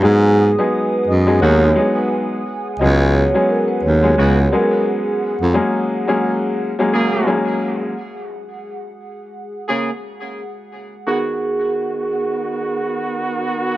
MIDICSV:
0, 0, Header, 1, 6, 480
1, 0, Start_track
1, 0, Key_signature, 5, "minor"
1, 0, Tempo, 689655
1, 26, Time_signature, 4, 2, 24, 8
1, 9585, End_track
2, 0, Start_track
2, 0, Title_t, "Analog synth pad"
2, 0, Program_c, 0, 89
2, 22, Note_on_c, 0, 78, 73
2, 22, Note_on_c, 0, 80, 71
2, 22, Note_on_c, 0, 87, 84
2, 23, Note_on_c, 0, 68, 81
2, 1924, Note_off_c, 0, 87, 0
2, 3836, Note_off_c, 0, 80, 0
2, 7676, Note_off_c, 0, 68, 0
2, 7676, Note_off_c, 0, 78, 0
2, 9585, End_track
3, 0, Start_track
3, 0, Title_t, "Vibraphone"
3, 0, Program_c, 1, 11
3, 29, Note_on_c, 1, 68, 88
3, 384, Note_off_c, 1, 68, 0
3, 408, Note_on_c, 1, 71, 89
3, 727, Note_off_c, 1, 71, 0
3, 749, Note_on_c, 1, 75, 68
3, 964, Note_off_c, 1, 75, 0
3, 978, Note_on_c, 1, 73, 88
3, 1338, Note_off_c, 1, 73, 0
3, 1367, Note_on_c, 1, 71, 80
3, 1457, Note_off_c, 1, 71, 0
3, 1945, Note_on_c, 1, 75, 97
3, 2161, Note_off_c, 1, 75, 0
3, 2186, Note_on_c, 1, 73, 76
3, 2402, Note_off_c, 1, 73, 0
3, 2430, Note_on_c, 1, 70, 75
3, 2553, Note_off_c, 1, 70, 0
3, 2561, Note_on_c, 1, 71, 79
3, 2653, Note_off_c, 1, 71, 0
3, 2659, Note_on_c, 1, 73, 79
3, 3115, Note_off_c, 1, 73, 0
3, 3145, Note_on_c, 1, 70, 82
3, 3361, Note_off_c, 1, 70, 0
3, 3380, Note_on_c, 1, 68, 81
3, 3599, Note_off_c, 1, 68, 0
3, 7706, Note_on_c, 1, 68, 84
3, 9118, Note_off_c, 1, 68, 0
3, 9585, End_track
4, 0, Start_track
4, 0, Title_t, "Horn section"
4, 0, Program_c, 2, 61
4, 991, Note_on_c, 2, 51, 107
4, 991, Note_on_c, 2, 59, 103
4, 991, Note_on_c, 2, 66, 113
4, 1311, Note_off_c, 2, 51, 0
4, 1311, Note_off_c, 2, 59, 0
4, 1311, Note_off_c, 2, 66, 0
4, 2909, Note_on_c, 2, 49, 102
4, 2909, Note_on_c, 2, 59, 103
4, 2909, Note_on_c, 2, 66, 111
4, 3061, Note_off_c, 2, 49, 0
4, 3061, Note_off_c, 2, 59, 0
4, 3061, Note_off_c, 2, 66, 0
4, 4826, Note_on_c, 2, 68, 124
4, 4827, Note_on_c, 2, 49, 106
4, 4827, Note_on_c, 2, 58, 119
4, 5148, Note_off_c, 2, 49, 0
4, 5148, Note_off_c, 2, 68, 0
4, 5149, Note_off_c, 2, 58, 0
4, 6741, Note_on_c, 2, 49, 104
4, 6741, Note_on_c, 2, 58, 99
4, 6741, Note_on_c, 2, 68, 116
4, 6895, Note_off_c, 2, 49, 0
4, 6895, Note_off_c, 2, 68, 0
4, 6896, Note_off_c, 2, 58, 0
4, 7705, Note_on_c, 2, 51, 87
4, 7705, Note_on_c, 2, 59, 92
4, 7705, Note_on_c, 2, 66, 97
4, 9585, Note_off_c, 2, 51, 0
4, 9585, Note_off_c, 2, 59, 0
4, 9585, Note_off_c, 2, 66, 0
4, 9585, End_track
5, 0, Start_track
5, 0, Title_t, "Upright piano"
5, 0, Program_c, 3, 0
5, 14, Note_on_c, 3, 54, 96
5, 16, Note_on_c, 3, 56, 86
5, 18, Note_on_c, 3, 59, 88
5, 21, Note_on_c, 3, 63, 92
5, 23, Note_on_c, 3, 68, 110
5, 365, Note_off_c, 3, 54, 0
5, 367, Note_off_c, 3, 56, 0
5, 368, Note_off_c, 3, 59, 0
5, 369, Note_off_c, 3, 63, 0
5, 370, Note_off_c, 3, 68, 0
5, 407, Note_on_c, 3, 54, 91
5, 409, Note_on_c, 3, 56, 86
5, 411, Note_on_c, 3, 59, 84
5, 414, Note_on_c, 3, 63, 83
5, 417, Note_on_c, 3, 68, 100
5, 841, Note_off_c, 3, 54, 0
5, 842, Note_off_c, 3, 56, 0
5, 843, Note_off_c, 3, 59, 0
5, 845, Note_off_c, 3, 63, 0
5, 846, Note_off_c, 3, 68, 0
5, 880, Note_on_c, 3, 54, 98
5, 883, Note_on_c, 3, 56, 91
5, 885, Note_on_c, 3, 59, 83
5, 887, Note_on_c, 3, 63, 82
5, 889, Note_on_c, 3, 68, 108
5, 1199, Note_off_c, 3, 54, 0
5, 1201, Note_off_c, 3, 56, 0
5, 1202, Note_off_c, 3, 59, 0
5, 1202, Note_off_c, 3, 63, 0
5, 1204, Note_off_c, 3, 68, 0
5, 1218, Note_on_c, 3, 54, 96
5, 1220, Note_on_c, 3, 56, 89
5, 1223, Note_on_c, 3, 59, 98
5, 1224, Note_on_c, 3, 63, 90
5, 1227, Note_on_c, 3, 68, 109
5, 1670, Note_off_c, 3, 54, 0
5, 1670, Note_off_c, 3, 56, 0
5, 1672, Note_off_c, 3, 59, 0
5, 1673, Note_off_c, 3, 63, 0
5, 1674, Note_off_c, 3, 68, 0
5, 1953, Note_on_c, 3, 54, 102
5, 1956, Note_on_c, 3, 56, 90
5, 1958, Note_on_c, 3, 59, 90
5, 1960, Note_on_c, 3, 61, 87
5, 1963, Note_on_c, 3, 68, 106
5, 2295, Note_off_c, 3, 54, 0
5, 2296, Note_off_c, 3, 56, 0
5, 2298, Note_off_c, 3, 59, 0
5, 2299, Note_off_c, 3, 61, 0
5, 2300, Note_off_c, 3, 68, 0
5, 2326, Note_on_c, 3, 54, 97
5, 2328, Note_on_c, 3, 56, 83
5, 2330, Note_on_c, 3, 59, 88
5, 2332, Note_on_c, 3, 61, 84
5, 2335, Note_on_c, 3, 68, 104
5, 2761, Note_off_c, 3, 54, 0
5, 2762, Note_off_c, 3, 56, 0
5, 2763, Note_off_c, 3, 59, 0
5, 2764, Note_off_c, 3, 61, 0
5, 2765, Note_off_c, 3, 68, 0
5, 2801, Note_on_c, 3, 54, 96
5, 2803, Note_on_c, 3, 56, 92
5, 2806, Note_on_c, 3, 59, 85
5, 2808, Note_on_c, 3, 61, 80
5, 2811, Note_on_c, 3, 68, 108
5, 3119, Note_off_c, 3, 54, 0
5, 3120, Note_off_c, 3, 56, 0
5, 3122, Note_off_c, 3, 59, 0
5, 3123, Note_off_c, 3, 61, 0
5, 3124, Note_off_c, 3, 68, 0
5, 3148, Note_on_c, 3, 54, 103
5, 3151, Note_on_c, 3, 56, 96
5, 3153, Note_on_c, 3, 59, 89
5, 3154, Note_on_c, 3, 61, 91
5, 3157, Note_on_c, 3, 68, 108
5, 3710, Note_off_c, 3, 54, 0
5, 3712, Note_off_c, 3, 56, 0
5, 3713, Note_off_c, 3, 59, 0
5, 3713, Note_off_c, 3, 61, 0
5, 3715, Note_off_c, 3, 68, 0
5, 3853, Note_on_c, 3, 54, 98
5, 3855, Note_on_c, 3, 56, 90
5, 3858, Note_on_c, 3, 58, 89
5, 3859, Note_on_c, 3, 61, 87
5, 3863, Note_on_c, 3, 68, 111
5, 4205, Note_off_c, 3, 54, 0
5, 4206, Note_off_c, 3, 56, 0
5, 4208, Note_off_c, 3, 58, 0
5, 4208, Note_off_c, 3, 61, 0
5, 4210, Note_off_c, 3, 68, 0
5, 4228, Note_on_c, 3, 54, 101
5, 4231, Note_on_c, 3, 56, 82
5, 4233, Note_on_c, 3, 58, 90
5, 4235, Note_on_c, 3, 61, 92
5, 4238, Note_on_c, 3, 68, 113
5, 4672, Note_off_c, 3, 54, 0
5, 4673, Note_off_c, 3, 56, 0
5, 4674, Note_off_c, 3, 58, 0
5, 4675, Note_off_c, 3, 61, 0
5, 4677, Note_off_c, 3, 68, 0
5, 4724, Note_on_c, 3, 54, 100
5, 4727, Note_on_c, 3, 56, 91
5, 4729, Note_on_c, 3, 58, 89
5, 4731, Note_on_c, 3, 61, 93
5, 4733, Note_on_c, 3, 68, 105
5, 5041, Note_off_c, 3, 54, 0
5, 5042, Note_off_c, 3, 56, 0
5, 5044, Note_off_c, 3, 58, 0
5, 5044, Note_off_c, 3, 61, 0
5, 5046, Note_off_c, 3, 68, 0
5, 5058, Note_on_c, 3, 54, 102
5, 5059, Note_on_c, 3, 56, 86
5, 5062, Note_on_c, 3, 58, 91
5, 5064, Note_on_c, 3, 61, 91
5, 5066, Note_on_c, 3, 68, 107
5, 5509, Note_off_c, 3, 54, 0
5, 5510, Note_off_c, 3, 56, 0
5, 5511, Note_off_c, 3, 58, 0
5, 5513, Note_off_c, 3, 61, 0
5, 5514, Note_off_c, 3, 68, 0
5, 9585, End_track
6, 0, Start_track
6, 0, Title_t, "Baritone saxophone"
6, 0, Program_c, 4, 67
6, 28, Note_on_c, 4, 44, 115
6, 362, Note_off_c, 4, 44, 0
6, 747, Note_on_c, 4, 42, 91
6, 959, Note_off_c, 4, 42, 0
6, 985, Note_on_c, 4, 39, 110
6, 1198, Note_off_c, 4, 39, 0
6, 1945, Note_on_c, 4, 37, 120
6, 2281, Note_off_c, 4, 37, 0
6, 2666, Note_on_c, 4, 39, 94
6, 2878, Note_off_c, 4, 39, 0
6, 2907, Note_on_c, 4, 37, 92
6, 3119, Note_off_c, 4, 37, 0
6, 3766, Note_on_c, 4, 41, 98
6, 3855, Note_off_c, 4, 41, 0
6, 9585, End_track
0, 0, End_of_file